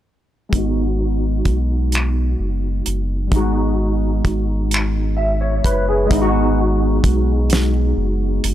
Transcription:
0.49 G#3 B3, kick, closed hi-hat
0.54 G#1 D#4 F#4
1.45 B1, kick, closed hi-hat
1.92 finger snap, closed hi-hat
2.40 F#1
2.86 F#1, closed hi-hat
3.27 G3 B3
3.32 G#1 G#3 D#4, kick, closed hi-hat
3.36 F#4
4.25 G#1, kick, closed hi-hat
4.71 finger snap, closed hi-hat
5.17 E5
5.41 C#5
5.64 F#1 B4, kick, closed hi-hat
5.89 G#4
6.06 G#3 B3
6.11 G#1 D#4, kick, closed hi-hat
6.15 E4
6.21 F#4
7.04 B1, kick, closed hi-hat
7.50 snare, closed hi-hat
7.98 F#1
8.44 F#1, closed hi-hat

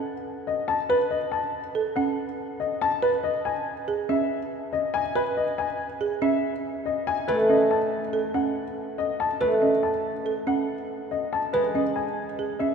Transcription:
Already playing: C#4 F#5
0.47 D#5
0.68 A5
0.89 B4
1.11 D#5
1.32 A5
1.75 A4
1.96 C#4 F#5
2.60 D#5
2.81 A5
3.02 B4
3.24 D#5
3.45 G#5
3.88 G#4
4.09 C#4 E5
4.73 D#5
4.94 G#5
5.15 B4
5.37 D#5
5.58 G#5
6.01 G#4
6.22 C#4 E5
6.86 D#5
7.07 G#5
7.28 A3 B4
7.49 C#4 D#5
7.71 A5
8.13 A4
8.34 C#4 F#5
8.98 D#5
9.20 A5
9.41 A3 B4
9.62 C#4 D#5
9.83 A5
10.26 A4
10.47 C#4 F#5
11.11 D#5
11.33 A5
11.53 G#3 B4
11.75 C#4 D#5
11.96 G#5
12.39 G#4
12.59 C#4 E5

